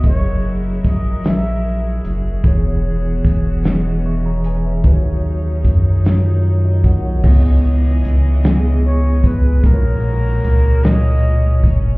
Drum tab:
CC |------|------|------|x-----|
HH |x-xx-x|x-xx-x|x-xx-x|--xx-x|
SD |---o--|---o--|---o--|---o--|
BD |o-o---|o-o---|o-o--o|o----o|

CC |------|
HH |x-xx-x|
SD |---o--|
BD |o----o|